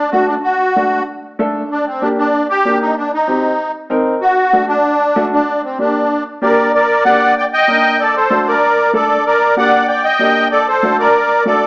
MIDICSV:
0, 0, Header, 1, 3, 480
1, 0, Start_track
1, 0, Key_signature, -2, "minor"
1, 0, Tempo, 314630
1, 677, Time_signature, 4, 2, 24, 8
1, 17801, End_track
2, 0, Start_track
2, 0, Title_t, "Accordion"
2, 0, Program_c, 0, 21
2, 0, Note_on_c, 0, 62, 93
2, 154, Note_off_c, 0, 62, 0
2, 179, Note_on_c, 0, 66, 89
2, 411, Note_off_c, 0, 66, 0
2, 418, Note_on_c, 0, 62, 84
2, 530, Note_off_c, 0, 62, 0
2, 662, Note_on_c, 0, 66, 90
2, 1569, Note_off_c, 0, 66, 0
2, 2608, Note_on_c, 0, 62, 81
2, 2827, Note_off_c, 0, 62, 0
2, 2848, Note_on_c, 0, 60, 78
2, 3071, Note_on_c, 0, 62, 92
2, 3090, Note_off_c, 0, 60, 0
2, 3181, Note_off_c, 0, 62, 0
2, 3325, Note_on_c, 0, 62, 88
2, 3769, Note_off_c, 0, 62, 0
2, 3809, Note_on_c, 0, 67, 112
2, 4250, Note_off_c, 0, 67, 0
2, 4294, Note_on_c, 0, 63, 87
2, 4510, Note_off_c, 0, 63, 0
2, 4535, Note_on_c, 0, 62, 85
2, 4750, Note_off_c, 0, 62, 0
2, 4787, Note_on_c, 0, 63, 80
2, 5671, Note_off_c, 0, 63, 0
2, 6429, Note_on_c, 0, 66, 100
2, 7102, Note_off_c, 0, 66, 0
2, 7145, Note_on_c, 0, 62, 91
2, 8050, Note_off_c, 0, 62, 0
2, 8130, Note_on_c, 0, 62, 84
2, 8570, Note_off_c, 0, 62, 0
2, 8603, Note_on_c, 0, 60, 75
2, 8823, Note_off_c, 0, 60, 0
2, 8849, Note_on_c, 0, 62, 80
2, 9513, Note_off_c, 0, 62, 0
2, 9805, Note_on_c, 0, 74, 84
2, 9820, Note_on_c, 0, 70, 68
2, 10248, Note_off_c, 0, 74, 0
2, 10256, Note_off_c, 0, 70, 0
2, 10284, Note_on_c, 0, 74, 87
2, 10299, Note_on_c, 0, 70, 71
2, 10735, Note_off_c, 0, 70, 0
2, 10737, Note_off_c, 0, 74, 0
2, 10750, Note_on_c, 0, 78, 106
2, 10760, Note_on_c, 0, 74, 84
2, 11200, Note_off_c, 0, 78, 0
2, 11205, Note_off_c, 0, 74, 0
2, 11255, Note_on_c, 0, 79, 96
2, 11265, Note_on_c, 0, 74, 80
2, 11359, Note_off_c, 0, 79, 0
2, 11366, Note_off_c, 0, 74, 0
2, 11493, Note_on_c, 0, 79, 114
2, 11501, Note_on_c, 0, 75, 79
2, 12159, Note_off_c, 0, 75, 0
2, 12207, Note_on_c, 0, 74, 85
2, 12216, Note_on_c, 0, 69, 68
2, 12226, Note_off_c, 0, 79, 0
2, 12430, Note_off_c, 0, 69, 0
2, 12448, Note_on_c, 0, 72, 84
2, 12449, Note_off_c, 0, 74, 0
2, 12457, Note_on_c, 0, 69, 67
2, 12894, Note_off_c, 0, 69, 0
2, 12926, Note_on_c, 0, 74, 85
2, 12937, Note_off_c, 0, 72, 0
2, 12943, Note_on_c, 0, 70, 72
2, 13592, Note_off_c, 0, 74, 0
2, 13600, Note_off_c, 0, 70, 0
2, 13651, Note_on_c, 0, 74, 86
2, 13663, Note_on_c, 0, 69, 65
2, 14098, Note_off_c, 0, 69, 0
2, 14111, Note_off_c, 0, 74, 0
2, 14134, Note_on_c, 0, 74, 90
2, 14143, Note_on_c, 0, 70, 69
2, 14573, Note_off_c, 0, 74, 0
2, 14577, Note_off_c, 0, 70, 0
2, 14613, Note_on_c, 0, 78, 104
2, 14619, Note_on_c, 0, 74, 82
2, 15052, Note_off_c, 0, 78, 0
2, 15056, Note_off_c, 0, 74, 0
2, 15069, Note_on_c, 0, 79, 92
2, 15084, Note_on_c, 0, 74, 76
2, 15288, Note_off_c, 0, 79, 0
2, 15304, Note_off_c, 0, 74, 0
2, 15310, Note_on_c, 0, 79, 112
2, 15326, Note_on_c, 0, 75, 80
2, 15983, Note_off_c, 0, 79, 0
2, 15991, Note_off_c, 0, 75, 0
2, 16043, Note_on_c, 0, 74, 93
2, 16051, Note_on_c, 0, 69, 67
2, 16268, Note_off_c, 0, 69, 0
2, 16287, Note_off_c, 0, 74, 0
2, 16292, Note_on_c, 0, 72, 83
2, 16302, Note_on_c, 0, 69, 72
2, 16731, Note_off_c, 0, 72, 0
2, 16737, Note_off_c, 0, 69, 0
2, 16767, Note_on_c, 0, 74, 86
2, 16781, Note_on_c, 0, 70, 76
2, 17439, Note_off_c, 0, 70, 0
2, 17460, Note_off_c, 0, 74, 0
2, 17483, Note_on_c, 0, 74, 88
2, 17493, Note_on_c, 0, 69, 64
2, 17801, Note_off_c, 0, 69, 0
2, 17801, Note_off_c, 0, 74, 0
2, 17801, End_track
3, 0, Start_track
3, 0, Title_t, "Upright piano"
3, 0, Program_c, 1, 0
3, 195, Note_on_c, 1, 57, 69
3, 199, Note_on_c, 1, 62, 64
3, 206, Note_on_c, 1, 66, 76
3, 532, Note_off_c, 1, 57, 0
3, 534, Note_off_c, 1, 62, 0
3, 538, Note_off_c, 1, 66, 0
3, 1162, Note_on_c, 1, 57, 60
3, 1163, Note_on_c, 1, 62, 62
3, 1171, Note_on_c, 1, 66, 74
3, 1496, Note_off_c, 1, 57, 0
3, 1497, Note_off_c, 1, 62, 0
3, 1501, Note_off_c, 1, 66, 0
3, 2121, Note_on_c, 1, 57, 78
3, 2127, Note_on_c, 1, 62, 73
3, 2132, Note_on_c, 1, 69, 89
3, 2456, Note_off_c, 1, 57, 0
3, 2459, Note_off_c, 1, 62, 0
3, 2461, Note_off_c, 1, 69, 0
3, 3076, Note_on_c, 1, 58, 65
3, 3082, Note_on_c, 1, 62, 63
3, 3093, Note_on_c, 1, 67, 78
3, 3413, Note_off_c, 1, 58, 0
3, 3416, Note_off_c, 1, 62, 0
3, 3422, Note_off_c, 1, 67, 0
3, 4043, Note_on_c, 1, 58, 68
3, 4048, Note_on_c, 1, 62, 62
3, 4055, Note_on_c, 1, 67, 78
3, 4377, Note_off_c, 1, 58, 0
3, 4379, Note_off_c, 1, 62, 0
3, 4383, Note_off_c, 1, 67, 0
3, 4995, Note_on_c, 1, 60, 69
3, 5002, Note_on_c, 1, 63, 59
3, 5010, Note_on_c, 1, 67, 72
3, 5332, Note_off_c, 1, 60, 0
3, 5336, Note_off_c, 1, 63, 0
3, 5340, Note_off_c, 1, 67, 0
3, 5948, Note_on_c, 1, 60, 85
3, 5954, Note_on_c, 1, 63, 75
3, 5962, Note_on_c, 1, 70, 87
3, 6289, Note_off_c, 1, 60, 0
3, 6292, Note_off_c, 1, 63, 0
3, 6296, Note_off_c, 1, 70, 0
3, 6911, Note_on_c, 1, 57, 69
3, 6915, Note_on_c, 1, 62, 62
3, 6920, Note_on_c, 1, 66, 77
3, 7250, Note_off_c, 1, 57, 0
3, 7252, Note_off_c, 1, 62, 0
3, 7254, Note_off_c, 1, 66, 0
3, 7871, Note_on_c, 1, 57, 83
3, 7872, Note_on_c, 1, 62, 76
3, 7882, Note_on_c, 1, 66, 92
3, 8210, Note_off_c, 1, 57, 0
3, 8210, Note_off_c, 1, 62, 0
3, 8215, Note_off_c, 1, 66, 0
3, 8827, Note_on_c, 1, 58, 63
3, 8836, Note_on_c, 1, 62, 60
3, 8841, Note_on_c, 1, 67, 70
3, 9168, Note_off_c, 1, 58, 0
3, 9172, Note_off_c, 1, 62, 0
3, 9175, Note_off_c, 1, 67, 0
3, 9788, Note_on_c, 1, 58, 78
3, 9797, Note_on_c, 1, 62, 75
3, 9800, Note_on_c, 1, 67, 83
3, 10128, Note_off_c, 1, 58, 0
3, 10133, Note_off_c, 1, 62, 0
3, 10134, Note_off_c, 1, 67, 0
3, 10753, Note_on_c, 1, 58, 70
3, 10763, Note_on_c, 1, 62, 56
3, 10768, Note_on_c, 1, 67, 75
3, 11091, Note_off_c, 1, 58, 0
3, 11096, Note_off_c, 1, 62, 0
3, 11099, Note_off_c, 1, 67, 0
3, 11711, Note_on_c, 1, 58, 65
3, 11721, Note_on_c, 1, 62, 62
3, 11723, Note_on_c, 1, 70, 76
3, 12050, Note_off_c, 1, 58, 0
3, 12055, Note_off_c, 1, 62, 0
3, 12056, Note_off_c, 1, 70, 0
3, 12665, Note_on_c, 1, 57, 66
3, 12671, Note_on_c, 1, 62, 65
3, 12675, Note_on_c, 1, 66, 75
3, 13007, Note_off_c, 1, 57, 0
3, 13010, Note_off_c, 1, 62, 0
3, 13012, Note_off_c, 1, 66, 0
3, 13627, Note_on_c, 1, 57, 64
3, 13633, Note_on_c, 1, 62, 65
3, 13639, Note_on_c, 1, 69, 79
3, 13968, Note_off_c, 1, 57, 0
3, 13971, Note_off_c, 1, 62, 0
3, 13974, Note_off_c, 1, 69, 0
3, 14590, Note_on_c, 1, 58, 68
3, 14595, Note_on_c, 1, 62, 60
3, 14602, Note_on_c, 1, 67, 72
3, 14930, Note_off_c, 1, 58, 0
3, 14932, Note_off_c, 1, 62, 0
3, 14935, Note_off_c, 1, 67, 0
3, 15547, Note_on_c, 1, 58, 69
3, 15557, Note_on_c, 1, 62, 68
3, 15560, Note_on_c, 1, 67, 78
3, 15888, Note_off_c, 1, 58, 0
3, 15893, Note_off_c, 1, 62, 0
3, 15894, Note_off_c, 1, 67, 0
3, 16518, Note_on_c, 1, 57, 65
3, 16526, Note_on_c, 1, 62, 58
3, 16531, Note_on_c, 1, 66, 78
3, 16853, Note_off_c, 1, 57, 0
3, 16857, Note_off_c, 1, 62, 0
3, 16860, Note_off_c, 1, 66, 0
3, 17474, Note_on_c, 1, 57, 69
3, 17484, Note_on_c, 1, 62, 63
3, 17489, Note_on_c, 1, 66, 74
3, 17801, Note_off_c, 1, 57, 0
3, 17801, Note_off_c, 1, 62, 0
3, 17801, Note_off_c, 1, 66, 0
3, 17801, End_track
0, 0, End_of_file